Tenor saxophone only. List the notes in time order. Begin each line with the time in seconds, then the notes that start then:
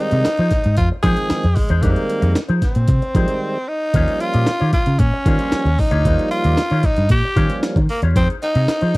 0.00 D#4
0.77 F4
1.02 G#4
1.55 G#3
1.83 A#3
2.63 C4
3.68 D#4
4.21 F4
4.73 F4
4.99 C#4
5.79 D#4
6.31 F4
6.86 D#4
7.11 G4
7.90 A#3
8.16 C4
8.43 D#4